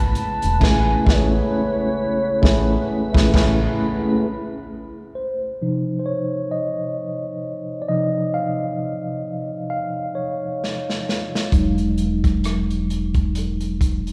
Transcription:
Already playing: G#1 C#3 G#3 A3 B3 C#4 E4 B4 A5
0.15 A5, closed hi-hat
0.42 E1, closed hi-hat
0.59 A1 A3 C#4 E4 G#4, kick, crash
0.63 B4 G#5, snare
1.05 A1 A3 C#4 E4 G#4, kick, snare
1.09 B4 C#5
2.41 A1 A3 C#4 E4 G#4, kick, snare
2.46 B4
3.13 A1 A3 C#4 E4 G#4, kick
3.17 B4, snare
3.33 A1 A3 C#4 E4 G#4, kick, snare, crash
3.37 B4
5.15 C5
5.61 C3 F3 D#4
5.99 C5
6.06 C#5
6.51 D#5
7.82 D5
7.88 C3 F3 D#4 D#5
8.34 F5
9.70 F5
10.15 C#5
10.64 snare
10.90 snare
11.09 snare
11.35 snare
11.52 E1 F#3 G#3 D#4, kick, closed hi-hat
11.78 closed hi-hat
11.98 closed hi-hat
12.24 kick, cross-stick, closed hi-hat
12.44 cross-stick, closed hi-hat
12.71 closed hi-hat
12.90 closed hi-hat
13.14 kick, closed hi-hat
13.35 closed hi-hat
13.61 closed hi-hat
13.81 kick, closed hi-hat
14.07 closed hi-hat

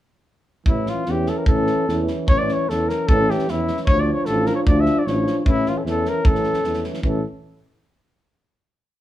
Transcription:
0.66 A1 E3 C#4 E4, kick
0.86 F4, snare
1.06 E2 E3 C#4, snare
1.11 G4
1.26 A4, snare
1.38 A#4
1.46 A1 E3 C#4 A4, kick
1.67 snare
1.88 E2 E3 C#4, snare
2.07 snare
2.28 A1 E3 C#4 C#5, kick
2.38 D5
2.48 snare
2.53 C#5
2.69 E2 E3 C#4 A4, snare
2.89 A#4, snare
3.07 A1 E3 C#4 A4, kick
3.30 G4, snare
3.39 snare
3.48 E2 E3 C#4 E4, snare
3.68 snare
3.77 snare
3.86 D2 F3 D4 C#5, kick
4.00 D5
4.13 C#5
4.25 A1 F3 D4 A4, snare
4.46 A#4, snare
4.55 C#5
4.67 D2 F3 D4 D5, kick
4.80 E5
4.86 snare
4.99 D5
5.05 A1 F3 D4 C#5, snare
5.27 snare
5.44 A1 E3 C#4, kick
5.48 E4
5.66 F4, snare
5.78 A4
5.84 E2 E3 C#4, snare
5.90 A4
6.05 A#4, snare
6.24 A1 E3 C#4 A4, kick
6.35 snare
6.44 snare
6.54 snare
6.62 E2 E3, snare
6.67 C#4
6.74 snare
6.84 snare
6.94 snare
7.02 A1 E3 C#4, kick
7.07 A4

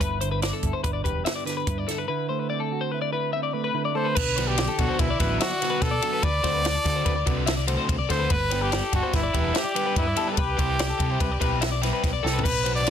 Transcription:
Already playing: D3
0.00 G1 G2 E4 B4, kick, closed hi-hat
0.21 D3 C5, closed hi-hat
0.32 B4
0.42 B3 D5, snare, closed hi-hat
0.53 A4
0.63 G1 E4, kick, closed hi-hat
0.73 C5
0.84 G1 D4 B4, kick, closed hi-hat
0.93 D5
1.04 E1 G4 B4, kick, closed hi-hat
1.25 B3 E5, snare, closed hi-hat
1.35 D5
1.45 D3 B4, snare, closed hi-hat
1.57 B4
1.67 G2 E4, kick, closed hi-hat
1.78 D5
1.88 D3 A4, snare, closed hi-hat
1.98 B4
2.08 D3 E4 B4
2.29 A3 C5
2.39 B4
2.50 C4 D5
2.60 A4
2.72 F#4
2.81 C5
2.92 E4 B4
3.02 D5
3.13 E4 B4
3.33 C4 E5
3.43 D5
3.53 A3 B4
3.64 B4
3.74 D3 E4
3.85 D5
3.95 A3 A4 C5
4.05 B4
4.15 B1 B4, kick, crash
4.36 F#3 B3 D4 F#4 C5, snare, ride
4.47 G4 B4
4.58 D5, snare, ride
4.68 A4
4.78 B1 F#3 B3 D4 F#4, kick, ride
4.89 C5
4.99 B1 E4 B4, kick, ride
5.10 D5
5.20 A1 F#3 B3 D4 F#4 B4, kick, snare, ride
5.40 F#4 E5, snare, ride
5.51 D5
5.61 F#3 B3 D4 F#4 B4, snare, ride
5.70 B4
5.82 B2 A4, kick, snare, ride
5.91 D5
6.02 F#3 B3 D4 F#4 A4, ride
6.13 B4
6.23 D2 B4 D5, kick, ride
6.43 D2 D3 A3 C4 F#4 C5, kick, snare, ride
6.54 B4
6.65 D5, snare, ride
6.75 A4
6.84 D3 A3 C4 F#4, kick, snare, ride
6.96 C5
7.05 D2 B4, kick, ride
7.16 D5
7.26 C2 D3 A3 C4 F#4 B4, kick, ride
7.46 E5, snare, ride
7.57 D5
7.67 D3 A3 C4 F#4 C5, ride
7.77 C5
7.89 C2, kick, ride
7.98 D5
8.09 D2 D3 A3 C4 F#4 A4 C5, kick, snare, ride
8.19 B4
8.30 G1 B4, kick, ride
8.50 G3 B3 D4 G4 C5, snare, ride
8.61 G4 B4
8.72 D5, snare, ride
8.82 A4
8.92 G1 G3 B3 D4 F#4 G4, kick, ride
9.03 C5
9.13 G1 E4 B4, kick, snare, ride
9.23 D5
9.34 E1 G3 B3 D4 G4 B4, kick, ride
9.54 G4 E5, snare, ride
9.64 D5
9.75 G3 B3 D4 G4 B4, ride
9.86 B4
9.96 G2 E4, kick, ride
10.07 D5
10.17 G3 B3 D4 G4 A4, ride
10.28 A4 B4
10.37 C2 G4 B4, kick, ride
10.57 C2 G3 C4 E4 G4 C5, kick, ride
10.69 B4
10.79 D5, snare, ride
10.90 A4
10.99 C3 G3 C4 E4 G4, kick, ride
11.10 C5
11.20 C2 B4, kick, ride
11.32 D5
11.40 B1 G3 C4 E4 G4 B4, kick, ride
11.61 E5, snare, ride
11.72 D5
11.82 G3 C4 E4 G4 B4, snare, ride
11.93 B4
12.03 B1, kick, snare, ride
12.13 D5
12.23 C2 G3 C4 E4 G4 A4, snare
12.33 B4
12.39 floor tom
12.43 B1 B4, kick, crash
12.64 F#3 B3 D4 F#4 C5, ride
12.75 B4 D5
12.85 D5, ride

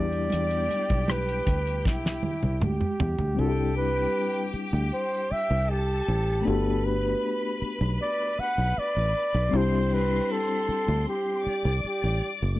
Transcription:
Already playing: E2 G3 B3 D4 E4 G4 D5 G5
0.12 closed hi-hat
0.30 E2, closed hi-hat, muted conga
0.51 closed hi-hat
0.69 closed hi-hat, muted conga
0.89 B1, kick, closed hi-hat
1.08 B4, cross-stick, closed hi-hat, high conga
1.29 closed hi-hat
1.47 D2, kick, closed hi-hat
1.67 closed hi-hat
1.85 B1 E4, kick, snare, muted conga
2.06 snare
2.23 muted conga, low conga
2.43 C2, high tom
2.61 D2, mid tom, high conga
2.65 G4
2.81 mid tom, high conga
3.00 E2, floor tom, high conga
3.19 D2, floor tom
3.35 C2 G3 C4 D4 G4
3.39 E4 F#4 A4 G5
3.49 G4
3.77 B4
4.54 muted fingered electric bass stroke
4.73 D2
4.94 C5
5.31 E5, muted fingered electric bass stroke
5.50 C2
5.68 G4 A4 A5
6.08 A1
6.42 A3 B3 D4 B4 B5
6.47 G1 F#4 G4 A4
6.85 B4
7.62 muted fingered electric bass stroke
7.81 B1
8.02 D5
8.39 F#5, muted fingered electric bass stroke
8.58 B1
8.78 D5, muted fingered electric bass stroke
8.97 A1
9.34 B1
9.49 C2 G3 C4 D4 C6
9.55 E4 G4 C5
9.94 B4
10.32 A4
10.69 muted fingered electric bass stroke
10.88 D2
11.09 G4
11.45 D5 D6, muted fingered electric bass stroke
11.65 C2
11.84 G4, muted fingered electric bass stroke
12.04 A1
12.42 F#1
12.56 A3

